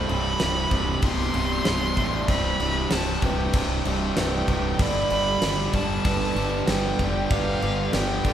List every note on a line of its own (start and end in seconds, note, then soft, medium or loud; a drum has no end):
0.00 4.76 E3 medium
0.00 4.76 A3 medium
0.00 2.26 G4 loud
0.00 0.40 C5 loud
0.00 1.05 B5 loud
0.09 0.34 C1 loud
0.09 0.40 C2 medium
0.09 0.40 G2 medium
0.09 0.41 C3 medium
0.09 crash medium
0.40 0.66 C1 medium
0.40 0.72 C2 loud
0.40 0.71 G2 loud
0.40 0.73 C3 loud
0.40 snare loud
0.40 crash medium
0.71 0.97 C1 loud
0.71 1.02 C2 medium
0.71 1.03 G2 medium
0.71 1.03 C3 medium
0.71 kick loud
0.71 crash medium
1.02 1.28 C1 medium
1.02 1.33 C2 loud
1.02 1.34 G2 loud
1.02 1.34 C3 loud
1.02 1.64 B3 loud
1.02 2.29 C6 loud
1.02 kick loud
1.02 crash medium
1.34 1.60 C1 loud
1.34 1.65 C2 medium
1.34 1.66 G2 medium
1.34 1.66 C3 loud
1.34 crash medium
1.65 1.91 C1 medium
1.65 1.96 C2 medium
1.65 1.97 G2 loud
1.65 1.97 C3 loud
1.65 1.97 B3 medium
1.65 snare loud
1.65 crash medium
1.97 2.22 A1 medium
1.97 2.27 C2 loud
1.97 2.28 G2 loud
1.97 2.28 C3 loud
1.97 2.29 D5 medium
1.97 kick medium
1.97 crash medium
2.28 2.54 C1 loud
2.28 2.59 C2 loud
2.28 2.60 G2 loud
2.28 2.60 C3 loud
2.28 4.77 A4 medium
2.28 2.91 C5 loud
2.28 2.93 B5 loud
2.28 kick loud
2.28 crash medium
2.60 2.85 C1 loud
2.60 2.90 C2 medium
2.60 2.90 G2 medium
2.60 2.91 C3 loud
2.60 crash medium
2.91 3.16 C1 medium
2.91 3.22 C2 loud
2.91 3.22 G2 loud
2.91 3.23 C3 loud
2.91 3.25 A5 loud
2.91 snare loud
2.91 crash loud
3.22 3.48 C1 loud
3.22 3.53 C2 medium
3.22 3.54 G2 medium
3.22 3.54 C3 loud
3.22 3.54 B4 medium
3.22 3.86 G5 loud
3.22 kick medium
3.22 crash medium
3.53 3.79 C1 loud
3.53 3.84 C2 loud
3.53 3.85 G2 loud
3.53 3.85 C3 loud
3.53 4.17 C5 medium
3.53 kick loud
3.53 crash loud
3.85 4.11 C1 loud
3.85 4.15 C2 medium
3.85 4.16 G2 loud
3.85 4.16 C3 medium
3.85 4.82 G5 loud
3.85 crash medium
4.17 4.42 C1 loud
4.17 4.47 C2 loud
4.17 4.47 G2 loud
4.17 4.48 C3 loud
4.17 4.79 B4 medium
4.17 snare loud
4.17 crash medium
4.48 4.73 C1 loud
4.48 4.77 C2 loud
4.48 4.78 G2 loud
4.48 4.78 C3 loud
4.48 kick medium
4.48 crash medium
4.79 5.05 G1 loud
4.79 5.11 G2 loud
4.79 5.10 D3 loud
4.79 8.33 F3 medium
4.79 5.11 G3 loud
4.79 8.33 B3 medium
4.79 8.33 G4 loud
4.79 5.42 D5 loud
4.79 5.74 B5 loud
4.79 kick loud
4.79 crash loud
5.10 5.36 G1 loud
5.10 5.42 G2 medium
5.10 5.41 D3 medium
5.10 5.43 G3 medium
5.10 crash medium
5.42 5.67 G1 medium
5.42 5.74 G2 loud
5.42 5.73 D3 loud
5.42 5.75 G3 loud
5.42 snare loud
5.42 crash loud
5.73 5.99 G1 loud
5.73 6.04 G2 medium
5.73 6.05 D3 loud
5.73 6.05 G3 medium
5.73 6.64 A5 loud
5.73 kick loud
5.73 crash medium
6.05 6.30 G1 medium
6.05 6.35 G2 loud
6.05 6.36 D3 loud
6.05 6.36 G3 loud
6.05 6.66 B4 loud
6.05 kick loud
6.05 crash medium
6.36 6.61 G1 loud
6.36 6.66 G2 medium
6.36 6.67 D3 medium
6.36 6.67 G3 loud
6.36 crash medium
6.67 6.93 G1 loud
6.67 6.98 G2 loud
6.67 6.98 D3 loud
6.67 6.98 G3 loud
6.67 6.99 B4 medium
6.67 7.32 G5 loud
6.67 snare loud
6.67 crash medium
6.99 7.24 F1 medium
6.99 7.29 G2 loud
6.99 7.29 D3 medium
6.99 7.30 G3 loud
6.99 7.31 D5 medium
6.99 kick medium
6.99 crash medium
7.30 7.56 G1 medium
7.30 7.61 G2 loud
7.30 7.61 D3 loud
7.30 7.62 G3 loud
7.30 7.93 B4 loud
7.30 7.95 F5 loud
7.30 kick loud
7.30 crash medium
7.62 7.88 G1 loud
7.62 7.92 G2 medium
7.62 7.92 D3 medium
7.62 7.93 G3 medium
7.62 crash medium
7.93 8.19 G1 medium
7.93 8.24 G2 loud
7.93 8.24 D3 loud
7.93 8.25 G3 loud
7.93 8.33 G5 loud
7.93 snare loud
7.93 crash medium
8.24 8.33 G1 medium
8.24 8.33 G2 medium
8.24 8.33 D3 medium
8.24 8.33 G3 medium
8.24 8.33 A4 medium
8.24 kick loud
8.24 crash medium